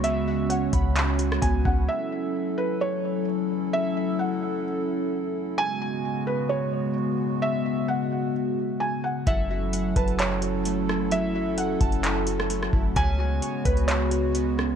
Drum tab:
HH |x---x-x-x-x-x---|----------------|----------------|----------------|
CP |--------x-------|----------------|----------------|----------------|
SD |-----------r----|----------------|----------------|----------------|
BD |------o-----o-o-|----------------|----------------|----------------|

HH |----------------|x---x-xxx-x-x---|x---x-xxx-x-x---|x---x-xxx-x-x---|
CP |----------------|--------x-------|--------x-------|--------x-------|
SD |----------------|--------------r-|-----------r-r--|--------------r-|
BD |----------------|o-----o---------|------o-------o-|o-----o---------|